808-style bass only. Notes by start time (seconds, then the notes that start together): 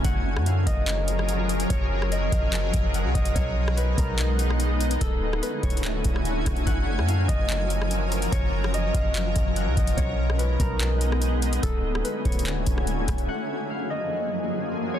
0.05 F#1
0.36 F#2
0.67 F#1
1.70 F#1
2.32 F#1
2.74 F#1
3.05 C#2
3.15 F#1
3.36 B1
3.98 B1
5.01 D1
5.63 D1
6.05 D1
6.46 D1
6.67 F#1
6.98 F#2
7.29 F#1
8.32 F#1
8.94 F#1
9.36 F#1
9.67 C#2
9.77 F#1
9.98 B1
10.60 B1
11.63 D1
12.25 D1
12.67 D1
13.08 D1